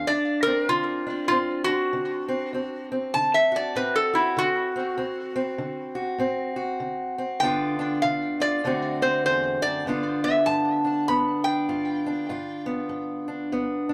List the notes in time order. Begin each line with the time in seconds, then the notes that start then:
Already playing: D4
0.07 D2 D4 D5
0.43 C4 A#4
0.69 D3 F4
1.07 D4
1.28 A2 C4 F4
1.64 D4 F#4
1.93 D3
2.28 C4
2.53 D2 C4
2.92 C4
3.14 D3 A5
3.34 E5
3.52 F#4
3.56 D5
3.75 A2 C4 B4
3.96 A4
4.13 E4 F#4
4.37 D3 F#4
4.76 C4
4.97 D2 C4
5.36 C4
5.58 D3
5.95 F#4
6.18 A2 C4
6.56 F#4
6.80 D3
7.18 C4
7.40 G2 D3 B3 D4 G5
7.45 F4
7.79 D4
8.02 D3 F5
8.40 F4 D5
8.64 D2 D3 A3 C4 F#4
9.02 C4 C5
9.26 E2 C5
9.62 F#2 D5
9.86 G2 D3 B3 D4 F4
10.24 B3 E5
10.46 G2 A5
10.85 D4
11.08 G2 B3 B5
11.44 D4 G5
11.69 G2 F4
12.06 D4
12.29 G2 F4
12.66 B3
12.89 G2
13.28 D4
13.52 G2 B3
13.89 D4